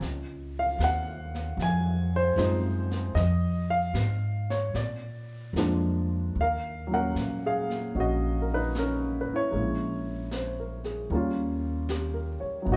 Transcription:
0.01 0.77 C#2 medium
0.01 brush sweep soft
0.01 snare soft
0.59 0.82 F5 medium
0.79 1.55 D#2 medium
0.79 snare soft
0.79 hi-hat pedal soft
0.84 1.63 F#5 medium
1.35 snare soft
1.57 2.34 F2 medium
1.57 brush sweep soft
1.57 snare soft
1.62 2.11 G#5 medium
2.16 3.13 C5 medium
2.36 3.13 F#2 medium
2.36 3.16 F3 soft
2.36 3.16 G#3 soft
2.36 3.16 C4 soft
2.36 3.16 D#4 medium
2.36 snare soft
2.36 hi-hat pedal soft
2.91 snare soft
3.14 3.92 F2 medium
3.14 3.72 D#5 medium
3.14 brush sweep soft
3.14 snare soft
3.70 4.52 F5 medium
3.94 4.71 G#2 medium
3.94 snare soft
3.94 hi-hat pedal soft
4.50 4.76 C#5 medium
4.50 snare soft
4.74 5.52 A#2 medium
4.74 6.07 D5 medium
4.74 brush sweep soft
4.74 snare soft
5.53 6.32 F2 medium
5.53 6.36 F3 soft
5.53 6.36 G#3 soft
5.53 6.36 A#3 soft
5.53 snare soft
5.53 hi-hat pedal soft
5.58 6.37 D4 medium
6.35 7.11 D#2 medium
6.35 brush sweep soft
6.41 6.88 A#4 medium
6.41 6.93 F5 medium
6.87 9.51 F#3 soft
6.91 9.53 A#2 soft
6.91 7.93 C#4 soft
6.91 7.41 A#4 medium
6.91 7.46 F#5 medium
7.15 7.91 A#2 medium
7.15 snare soft
7.15 hi-hat pedal soft
7.46 7.93 G#4 medium
7.46 7.94 F5 medium
7.70 snare soft
7.94 9.24 A#1 medium
7.94 8.76 C#4 soft
7.94 7.98 F#4 soft
7.94 7.99 D#5 soft
7.94 brush sweep soft
8.00 8.39 F#4 soft
8.00 8.39 D#5 medium
8.42 8.50 A#4 soft
8.54 8.74 D#4 medium
8.54 8.77 B4 medium
8.75 9.17 C#4 medium
8.75 9.22 A#4 medium
8.75 snare soft
8.75 hi-hat pedal soft
9.21 9.29 B4 soft
9.28 muted upright bass stroke soft
9.34 9.54 E4 medium
9.34 11.64 C#5 medium
9.51 11.06 A#1 medium
9.51 11.09 G#3 soft
9.51 11.10 A#3 soft
9.51 11.10 C#4 soft
9.51 brush sweep soft
9.55 11.11 E4 soft
10.31 10.83 C5 soft
10.31 snare soft
10.31 hi-hat pedal soft
10.60 11.00 A#4 soft
10.84 11.26 G#4 soft
10.84 snare soft
11.10 12.39 D#2 medium
11.10 12.67 G3 soft
11.10 12.68 A#3 soft
11.10 brush sweep soft
11.14 12.69 C#4 soft
11.14 12.70 F4 medium
11.89 12.39 G4 soft
11.89 snare soft
11.89 hi-hat pedal soft
12.14 12.55 A#4 soft
12.40 12.77 C#5 soft
12.40 muted upright bass stroke soft
12.62 12.77 F#3 soft
12.62 12.77 B3 soft
12.66 12.77 G#1 medium
12.66 12.77 D#4 soft
12.66 brush sweep soft
12.72 12.77 F#4 medium
12.72 12.77 D#5 medium

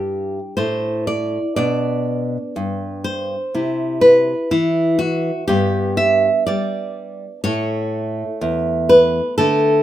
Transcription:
0.00 0.38 G2 medium
0.00 1.53 E4 soft
0.00 0.54 G4 medium
0.57 1.37 A2 medium
0.57 1.05 C5 medium
1.07 1.55 D5 medium
1.56 2.37 B2 medium
1.56 3.51 D4 soft
1.56 3.01 D5 medium
2.56 3.35 G2 medium
3.04 3.99 C5 medium
3.55 4.33 C3 medium
3.55 4.50 E4 soft
4.01 4.49 B4 medium
4.51 5.30 E3 medium
4.51 4.99 E4 medium
4.99 5.47 F#4 medium
5.48 6.27 G2 medium
5.48 7.40 B3 soft
5.48 5.96 G4 medium
5.97 6.45 E5 loud
6.46 7.25 G3 medium
6.46 7.40 D5 medium
7.44 8.22 A2 medium
7.44 9.35 A3 soft
7.44 8.86 C#5 medium
8.41 9.19 E2 medium
8.89 9.36 B4 medium
9.38 9.83 D3 medium
9.38 9.83 A3 soft
9.38 9.83 A4 medium

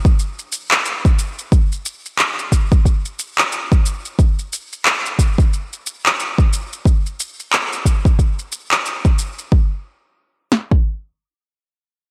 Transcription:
0.05 kick loud
0.05 shaker soft
0.19 shaker soft
0.39 shaker soft
0.52 shaker medium
0.71 clap medium
0.71 shaker soft
0.86 shaker soft
1.05 kick loud
1.05 shaker soft
1.19 shaker medium
1.39 shaker soft
1.52 kick loud
1.52 shaker soft
1.72 shaker soft
1.86 shaker medium
2.06 shaker soft
2.19 clap medium
2.19 shaker soft
2.39 shaker soft
2.52 kick medium
2.52 shaker medium
2.72 kick medium
2.72 shaker soft
2.85 kick medium
2.85 shaker soft
3.05 shaker soft
3.19 shaker medium
3.38 clap medium
3.38 shaker soft
3.52 shaker soft
3.72 kick medium
3.72 shaker soft
3.86 shaker medium
4.05 shaker soft
4.19 kick loud
4.19 shaker soft
4.39 shaker soft
4.53 shaker medium
4.73 shaker soft
4.85 clap medium
4.85 shaker soft
5.06 shaker soft
5.19 kick medium
5.19 shaker medium
5.38 kick medium
5.38 shaker soft
5.53 shaker soft
5.73 shaker soft
5.87 shaker medium
6.06 clap medium
6.06 shaker soft
6.20 shaker soft
6.38 kick medium
6.38 shaker soft
6.53 shaker medium
6.73 shaker soft
6.85 kick loud
6.85 shaker soft
7.06 shaker soft
7.20 shaker medium
7.40 shaker soft
7.53 clap medium
7.53 shaker soft
7.73 shaker soft
7.86 kick medium
7.86 shaker medium
8.05 kick medium
8.05 shaker soft
8.19 kick medium
8.19 shaker soft
8.39 shaker soft
8.52 shaker medium
8.71 clap medium
8.71 shaker soft
8.86 shaker soft
9.05 kick medium
9.05 shaker soft
9.19 shaker medium
9.39 shaker soft
9.52 kick loud
10.52 snare medium
10.71 kick medium

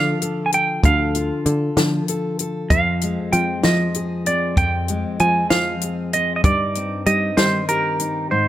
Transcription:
0.00 0.13 D3 medium
0.00 0.80 D3 medium
0.00 1.77 F3 medium
0.00 1.15 F4 medium
0.00 0.21 A4 medium
0.00 0.45 F5 medium
0.22 0.52 A4 medium
0.22 closed hi-hat medium
0.46 0.52 G#5 medium
0.52 0.80 A4 medium
0.52 0.82 G5 medium
0.52 closed hi-hat medium
0.83 1.30 D2 medium
0.83 2.67 D3 medium
0.83 1.46 A4 medium
0.83 2.36 F5 medium
0.83 kick medium
0.83 closed hi-hat medium
1.15 2.71 F4 medium
1.15 closed hi-hat medium
1.46 1.69 D3 medium
1.46 2.08 A4 medium
1.46 closed hi-hat medium
1.77 2.00 D3 medium
1.77 3.64 F3 medium
1.77 snare medium
1.77 closed hi-hat medium
2.08 2.39 A4 medium
2.08 closed hi-hat medium
2.39 2.67 A4 medium
2.39 closed hi-hat medium
2.70 3.17 F2 medium
2.70 4.53 F2 medium
2.70 3.33 C4 medium
2.70 3.32 F5 medium
2.70 kick medium
2.70 closed hi-hat medium
3.01 4.89 G#3 medium
3.01 closed hi-hat medium
3.33 3.56 F3 medium
3.33 4.27 C4 medium
3.33 3.61 G5 medium
3.33 closed hi-hat medium
3.63 3.87 F3 medium
3.63 4.54 F3 medium
3.63 4.26 D#5 medium
3.63 snare loud
3.63 closed hi-hat medium
3.94 4.54 G#4 medium
3.94 closed hi-hat medium
4.26 4.58 C4 medium
4.26 4.55 D5 medium
4.26 closed hi-hat medium
4.57 5.04 F2 medium
4.57 6.41 F2 medium
4.57 5.20 C4 medium
4.57 5.20 G5 medium
4.57 kick medium
4.57 closed hi-hat medium
4.88 6.45 G#3 medium
4.88 closed hi-hat medium
5.20 5.43 F3 medium
5.20 6.14 C4 medium
5.20 5.50 G#5 medium
5.20 closed hi-hat soft
5.50 5.74 F3 medium
5.50 6.41 F3 medium
5.50 6.13 F5 medium
5.50 snare medium
5.50 closed hi-hat medium
5.81 6.41 G#4 medium
5.81 closed hi-hat medium
6.13 6.45 C4 medium
6.13 6.35 D#5 medium
6.13 closed hi-hat medium
6.36 6.43 D#5 medium
6.44 6.91 G2 medium
6.44 8.28 G2 medium
6.44 7.07 D#4 medium
6.44 7.06 D5 medium
6.44 kick medium
6.44 closed hi-hat medium
6.75 8.48 C4 medium
6.75 closed hi-hat medium
7.06 7.30 G3 medium
7.06 7.99 D#4 medium
7.06 7.38 D#5 medium
7.06 closed hi-hat medium
7.37 8.48 D#3 medium
7.37 7.61 G3 medium
7.37 7.68 C5 medium
7.37 snare loud
7.37 closed hi-hat medium
7.69 8.27 G4 medium
7.69 8.27 A#4 medium
7.69 closed hi-hat medium
8.00 8.27 D#4 medium
8.00 closed hi-hat medium
8.31 8.48 G#2 medium
8.31 8.48 D#4 medium
8.31 8.48 C5 medium

